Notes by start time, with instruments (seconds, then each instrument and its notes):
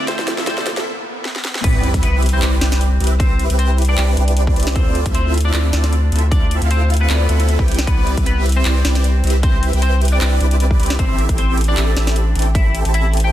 Already playing: ambient pad D2 C3 F3 E5, riser
0.06 synth pluck D3 A3 C4 F4 E5, clean electric guitar C4 C5, supersaw synth C4 E4 F4 A4 D5, snare, closed hi-hat
0.19 snare
0.28 snare, closed hi-hat
0.38 supersaw synth C4 E4 F4 A4 E5, snare
0.45 synth pluck D3 A3 C4 F4, clean electric guitar C4 C5, supersaw synth C4 E4 F4 A4 D5, snare, closed hi-hat
0.49 synth pluck E5
0.58 snare
0.67 snare, closed hi-hat
0.77 supersaw synth C4 E4 F4 A4 E5, snare
1.25 snare
1.36 snare
1.45 snare
1.55 snare
1.64 sub bass C2, clean electric guitar B3 B4, supersaw synth C4 E4 G4 B4 D5, kick, closed hi-hat, crash, sub drop
1.84 closed hi-hat
1.94 sub bass C2, supersaw synth C4 E4 G4 B4 E5, kick, closed hi-hat
2.03 clean electric guitar B3 B4, closed hi-hat
2.23 closed hi-hat
2.26 closed hi-hat
2.29 closed hi-hat
2.33 clean electric guitar C4 C5
2.42 sub bass C2, supersaw synth C4 E4 G4 B4 D5, clap, closed hi-hat
2.61 sub bass C2, supersaw synth C4 E4 G4 B4 D5, snare, closed hi-hat
2.72 snare, closed hi-hat
2.81 closed hi-hat
3.00 sub bass C2, supersaw synth C4 E4 G4 B4 E5, closed hi-hat
3.04 closed hi-hat
3.07 closed hi-hat
3.20 clean electric guitar C4 C5, kick, closed hi-hat
3.39 closed hi-hat
3.50 sub bass C2, supersaw synth C4 E4 G4 B4 G5, closed hi-hat
3.59 clean electric guitar C4 C5, closed hi-hat
3.78 closed hi-hat
3.82 closed hi-hat
3.85 clean electric guitar D4, closed hi-hat
3.89 clean electric guitar D5
3.98 sub bass C2, supersaw synth C4 E4 G4 B4 D5, clap, closed hi-hat
4.17 sub bass C2, supersaw synth C4 E4 G4 B4 D5, closed hi-hat
4.28 closed hi-hat
4.37 closed hi-hat
4.47 kick
4.56 sub bass C2, supersaw synth C4 E4 G4 B4 D5, closed hi-hat
4.60 closed hi-hat
4.63 closed hi-hat
4.67 snare
4.75 sub bass D2, clean electric guitar C4 C5, supersaw synth C4 E4 F4 A4, kick, closed hi-hat
4.95 closed hi-hat
5.06 sub bass D2, supersaw synth A4 E5, kick, closed hi-hat
5.15 clean electric guitar C4 C5, closed hi-hat
5.34 closed hi-hat
5.38 closed hi-hat
5.41 closed hi-hat
5.45 clean electric guitar D4 D5
5.54 sub bass D2, supersaw synth C4 E4 F4 A4 D5, clap, closed hi-hat
5.73 sub bass D2, supersaw synth C4 E4 F4 A4 D5, snare, closed hi-hat
5.84 snare, closed hi-hat
5.93 closed hi-hat
6.12 sub bass D2, supersaw synth C4 E4 F4 A4 E5, closed hi-hat
6.16 closed hi-hat
6.19 closed hi-hat
6.31 clean electric guitar D4 D5, kick, closed hi-hat
6.51 closed hi-hat
6.62 sub bass D2, supersaw synth C4 E4 F4 A4 F5, closed hi-hat
6.71 clean electric guitar C4 C5, closed hi-hat
6.90 closed hi-hat
6.94 closed hi-hat
6.97 closed hi-hat
7.01 clean electric guitar B3 B4
7.09 sub bass D2, supersaw synth C4 E4 F4 A4 D5, clap, closed hi-hat
7.29 sub bass D2, supersaw synth C4 E4 F4 A4 E5, closed hi-hat
7.40 closed hi-hat
7.49 closed hi-hat
7.59 sub bass C2, supersaw synth C4 E4 G4 B4 G5, kick
7.68 closed hi-hat
7.72 closed hi-hat
7.74 closed hi-hat
7.79 snare
7.87 sub bass C2, clean electric guitar B3 B4, supersaw synth C4 E4 G4 B4 D5, kick, closed hi-hat
8.07 closed hi-hat
8.17 sub bass C2, supersaw synth C4 E4 G4, kick, closed hi-hat
8.26 clean electric guitar B3 B4, closed hi-hat
8.46 closed hi-hat
8.49 closed hi-hat
8.52 clean electric guitar C4, closed hi-hat
8.57 clean electric guitar C5
8.65 sub bass C2, supersaw synth C4 E4 G4 B4 D5, clap, closed hi-hat
8.85 sub bass C2, supersaw synth C4 E4 G4 B4 D5, snare, closed hi-hat
8.95 snare, closed hi-hat
9.04 closed hi-hat
9.24 sub bass C2, supersaw synth C4 E4 G4 B4 E5, closed hi-hat
9.27 closed hi-hat
9.30 closed hi-hat
9.43 clean electric guitar C4 C5, kick, closed hi-hat
9.63 closed hi-hat
9.73 sub bass C2, supersaw synth C4 E4 G4 B4 G5, closed hi-hat
9.82 clean electric guitar C4 C5, closed hi-hat
10.01 closed hi-hat
10.05 closed hi-hat
10.08 closed hi-hat
10.12 clean electric guitar D4 D5
10.21 sub bass C2, supersaw synth C4 E4 G4 B4 D5, clap, closed hi-hat
10.41 sub bass C2, supersaw synth C4 E4 G4 B4 D5, closed hi-hat
10.51 closed hi-hat
10.60 closed hi-hat
10.71 kick
10.80 sub bass C2, supersaw synth C4 E4 G4 B4 D5, closed hi-hat
10.83 closed hi-hat
10.86 closed hi-hat
10.90 snare
10.99 sub bass A1, clean electric guitar C4 C5, supersaw synth C4 E4 G4 A4 E5, kick, closed hi-hat
11.19 closed hi-hat
11.29 sub bass A1, supersaw synth C4 E4 G4 A4 G5, kick, closed hi-hat
11.38 clean electric guitar C4 C5, closed hi-hat
11.58 closed hi-hat
11.61 closed hi-hat
11.64 closed hi-hat
11.68 clean electric guitar D4 D5
11.77 sub bass A1, supersaw synth C4 E4 G4 A4 E5, clap, closed hi-hat
11.97 sub bass A1, supersaw synth C4 E4 G4 A4 E5, snare, closed hi-hat
12.07 snare, closed hi-hat
12.16 closed hi-hat
12.35 sub bass A1, supersaw synth C4 E4 G4 A4 G5, closed hi-hat
12.39 closed hi-hat
12.42 closed hi-hat
12.55 clean electric guitar E4 E5, kick, closed hi-hat
12.75 closed hi-hat
12.85 sub bass A1, supersaw synth C4 E4 G4 A4 A5, closed hi-hat
12.94 clean electric guitar E4 E5, closed hi-hat
13.14 closed hi-hat
13.17 closed hi-hat
13.20 closed hi-hat
13.24 clean electric guitar G4 G5